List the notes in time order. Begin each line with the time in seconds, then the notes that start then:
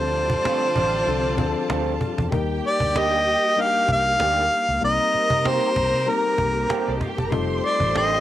Already playing: D2 D3 F3 G3 C4 D4 F4 A4 C5 D5 A5
0.14 cajon slap
0.30 cajon bass
0.44 A3 C4 F4 A4, cajon slap
0.75 A1 C4 D4 F4, cajon bass
1.06 C2 F3 C4 D4 A4, cajon slap
1.37 D2 F3 C4 D4 G#4, cajon bass
1.46 A4
1.69 D2 A3 C4 F4 A4, cajon slap
2.01 cajon bass
2.18 E2, cajon bass
2.31 D#2 G3 A#3 D#4 G4 A#4 G5, cajon bass
2.50 cajon slap
2.64 D5, cajon slap
2.80 D2, cajon bass
2.95 D#3 A#3 D4 G4, cajon slap
2.99 D#5
3.27 cajon slap
3.57 G3 A#3 D4 D#4 A#4, cajon slap
3.61 F5
3.88 C2, cajon bass
3.92 F5
4.20 D2 D#3 A#3 D4 G4, cajon slap
4.52 cajon slap
4.69 C#2
4.81 C2 G3 A#3 C4 D#4 G4 A#4 D#5 A#5, cajon slap
5.00 cajon slap
5.14 muted fingered electric bass stroke, cajon slap
5.30 C3, cajon bass
5.44 D#3 A#3 C4 G4 C5, cajon slap
5.76 C2, cajon bass
5.94 C3
6.06 G3 A#3 C4 D#4 A4 A#4, cajon slap
6.15 A#4
6.38 C2, cajon bass
6.69 D#3 A#3 C4 G4, cajon slap
6.87 C2 D4 D5
6.94 D#4 D#5
7.01 F4 F5, cajon bass
7.09 G4 G5
7.17 F#1 A4 A5, cajon bass
7.25 A#4 A#5
7.31 F1 G3 A3 C4 D#4 F4 A4 C5 C6, cajon bass
7.64 D5, cajon slap
7.80 A1, cajon bass
7.94 D#3 A3 D4 G4 D#5, cajon slap